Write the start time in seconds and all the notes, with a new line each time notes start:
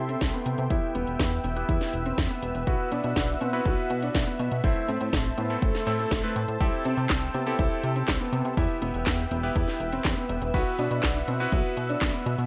Already playing: C3 C4 E4 G4 A4 E5 G5 C6
0.09 C4, closed hi-hat
0.21 C2, kick, snare, closed hi-hat
0.33 B3
0.46 C3, closed hi-hat
0.58 C3, closed hi-hat
0.70 E2 B3 E4 G4 B4 E5 E6, kick, closed hi-hat
0.95 E1 B3, closed hi-hat
1.07 E1, closed hi-hat
1.19 E2, kick, snare, closed hi-hat
1.44 E1 B3, closed hi-hat
1.56 B3 E4 G4 B4, closed hi-hat
1.69 E2 E4, kick, closed hi-hat
1.81 snare, closed hi-hat
1.93 E1, closed hi-hat
2.06 C4, closed hi-hat
2.18 E2, kick, snare, closed hi-hat
2.30 B3
2.42 E1, closed hi-hat
2.55 E1, closed hi-hat
2.67 B1 B3 E4 F#4 B4 F#5, kick, closed hi-hat
2.92 B2 D4, closed hi-hat
3.04 B2, closed hi-hat
3.16 B1, kick, snare, closed hi-hat
3.41 B2 C4, closed hi-hat
3.53 B3 E4 F#4 B4, closed hi-hat
3.65 B1 F#4, kick, closed hi-hat
3.78 closed hi-hat
3.90 B2, closed hi-hat
4.02 D4, closed hi-hat
4.15 B1, kick, snare, closed hi-hat
4.27 B3
4.39 B2, closed hi-hat
4.51 B2, closed hi-hat
4.64 A1 A3 C4 E4 C5 A5 E6, kick, closed hi-hat
4.76 closed hi-hat
4.88 A2 C4, closed hi-hat
5.01 A2, closed hi-hat
5.13 A1, kick, snare, closed hi-hat
5.38 A2 B3, closed hi-hat
5.50 A3 C4 E4 A4, closed hi-hat
5.62 A1 A3, kick, closed hi-hat
5.74 snare, closed hi-hat
5.87 A2 A3 C4 E4 A4, closed hi-hat
5.99 A3, closed hi-hat
6.11 A1, kick, snare, closed hi-hat
6.24 A3 C4 E4 B4
6.36 A2, closed hi-hat
6.48 A2, closed hi-hat
6.60 C2 C4 E4 G4 A4 G5, kick, closed hi-hat
6.85 C3 C4, closed hi-hat
6.97 C3, closed hi-hat
7.10 C2, kick, snare, clap, closed hi-hat
7.34 C3 B3, closed hi-hat
7.47 C4 E4 G4 A4, closed hi-hat
7.59 C2 E4, kick, closed hi-hat
7.71 closed hi-hat
7.83 C3, closed hi-hat
7.96 C4, closed hi-hat
8.08 C2, kick, snare, clap, closed hi-hat
8.20 B3
8.33 C3, closed hi-hat
8.45 C3, closed hi-hat
8.57 E2 B3 E4 G4 B4 E5 G5 E6, kick, closed hi-hat
8.82 E1 B3, closed hi-hat
8.94 E1, closed hi-hat
9.06 E2, kick, snare, clap, closed hi-hat
9.31 E1 B3, closed hi-hat
9.43 B3 E4 G4 B4, closed hi-hat
9.56 E2 E4, kick, closed hi-hat
9.68 snare, closed hi-hat
9.80 E1, closed hi-hat
9.92 C4, closed hi-hat
10.05 E2, kick, snare, clap, closed hi-hat
10.17 B3
10.29 E1, closed hi-hat
10.42 E1, closed hi-hat
10.54 B1 B3 E4 F#4 B4 F#5, kick, closed hi-hat
10.79 B2 D4, closed hi-hat
10.91 B2, closed hi-hat
11.03 B1, kick, snare, clap, closed hi-hat
11.28 B2 C4, closed hi-hat
11.40 B3 E4 F#4 B4, closed hi-hat
11.52 B1 F#4, kick, closed hi-hat
11.65 closed hi-hat
11.77 B2, closed hi-hat
11.89 D4, closed hi-hat
12.02 B1, kick, snare, clap, closed hi-hat
12.14 B3
12.26 B2, closed hi-hat
12.38 B2, closed hi-hat